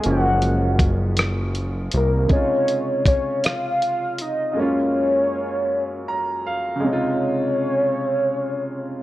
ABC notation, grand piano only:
X:1
M:6/8
L:1/8
Q:3/8=53
K:Db
V:1 name="Grand piano"
z6 | z6 | z4 b f | z6 |]
V:2 name="Grand piano" clef=bass
[F,A,B,D]6 | [C,D,A,EF]6 | [G,,A,B,DF]6 | [C,D,A,EF]6 |]